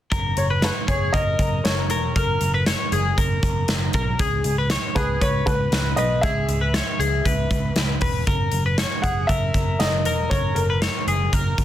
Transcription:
0.12 F#1 A#4, kick, closed hi-hat
0.37 F#1 C#5, closed hi-hat
0.51 B4
0.62 B4 C#5, snare, closed hi-hat
0.88 F#1 G#4 C#5, kick, closed hi-hat
1.12 F#1 A#4 D#5, kick, closed hi-hat
1.39 F#1, kick, closed hi-hat
1.64 F#1 C#5, snare, closed hi-hat
1.90 E1 A#4, closed hi-hat
2.16 F#1 A#4, kick, closed hi-hat
2.41 F#1, closed hi-hat
2.54 B4
2.66 C#5, snare, closed hi-hat
2.92 F#1 G#4, closed hi-hat
3.18 F#1 A#4, kick, closed hi-hat
3.43 F#1, kick, closed hi-hat
3.68 F#1, snare, closed hi-hat
3.93 B1 A#4, kick, closed hi-hat
4.19 C#2 G#4, kick, closed hi-hat
4.44 C#2, closed hi-hat
4.58 B4
4.70 C#5, snare, closed hi-hat
4.95 C#2 G#4 B4, kick, closed hi-hat
5.21 C#2 B4 C#5, kick, closed hi-hat
5.46 C#2 B4, kick, closed hi-hat
5.72 C#2, snare, closed hi-hat
5.96 B1 B4 D#5, closed hi-hat
6.21 C#2 G#4 E5, kick, closed hi-hat
6.48 C#2, closed hi-hat
6.61 B4
6.74 C#5, snare, closed hi-hat
6.99 C#2 G#4, closed hi-hat
7.25 C#2 B4, kick, closed hi-hat
7.50 C#2, kick, closed hi-hat
7.76 C#2, snare, closed hi-hat
8.01 E1 B4, kick, open hi-hat
8.27 F#1 A#4, kick, closed hi-hat
8.52 F#1, closed hi-hat
8.66 B4
8.78 C#5, snare, closed hi-hat
9.02 F#1 G#4 F#5, kick, closed hi-hat
9.27 F#1 A#4 E5, kick, closed hi-hat
9.54 F#1, kick, closed hi-hat
9.79 F#1 D#5, snare, closed hi-hat
10.05 E1 A#4, closed hi-hat
10.30 F#1 A#4 C#5, kick, closed hi-hat
10.55 F#1 A#4, closed hi-hat
10.70 B4
10.82 C#5, snare, closed hi-hat
11.07 F#1 G#4, closed hi-hat
11.33 F#1 A#4, kick, closed hi-hat
11.58 F#1, kick, closed hi-hat

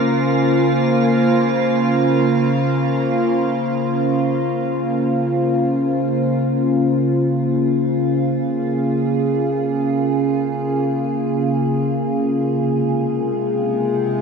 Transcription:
Already playing: C#3 A#3 F4 C5
7.26 G#4
12.44 C3
12.59 G#3

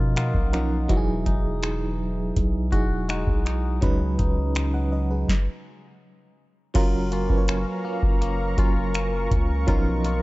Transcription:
Already playing: B2 F3 A#3 C#4 D#4 F4 A#4 D#5
0.16 A#3 D#4 F4 F#5, finger snap, closed hi-hat
0.34 B1, kick
0.52 F3 C#4 D#4 A#4 F#5, finger snap, closed hi-hat
0.89 E1 E3 F#3 D#4 E4 F#4, kick, closed hi-hat
0.97 G#4
1.26 E1 D#4, kick, closed hi-hat
1.63 finger snap, closed hi-hat
2.36 B1, kick, closed hi-hat
2.72 E1 F#3 D#4 E4 F#4 G#4, kick, closed hi-hat
3.09 G#3 D#4 F#4, finger snap, closed hi-hat
3.27 B1, kick
3.46 D#4, finger snap, closed hi-hat
3.81 C#2 C#3 F#3 C#4 D#4 B4, kick, closed hi-hat
4.19 C#2 D#4, kick, closed hi-hat
4.55 finger snap, closed hi-hat
4.74 D#5 F#5
4.92 B4 D#5
5.11 G#4 B4
5.29 kick, snare
6.74 F#1 F#3 C#4 F4 A#4 F5 A#5 C#6, kick, closed hi-hat, crash
7.12 A#3 C#4 F4, closed hi-hat
7.29 F#1 F#3 C#4 F4 B4, kick
7.38 C#5
7.48 C#4, finger snap, closed hi-hat
7.85 A#3
8.03 F#1, kick
8.21 A#3, closed hi-hat
8.57 F#1 F#3 A#3 C#4 F4 A#4, kick, closed hi-hat
8.94 finger snap, closed hi-hat
9.31 C#2, kick, closed hi-hat
9.67 B1 B2 F3 C#4 D#4 F4 A#4 D#5 F5, kick, closed hi-hat
10.04 A#3 D#4 F4, closed hi-hat

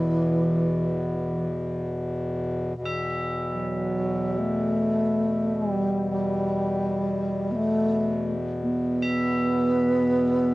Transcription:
Already playing: E2 B2 E3 D5
2.75 E2 B2
2.86 E5
3.52 F#3
4.39 A3
5.55 G3
6.10 G3
7.51 B3
7.55 A3
8.61 B3
9.02 E5

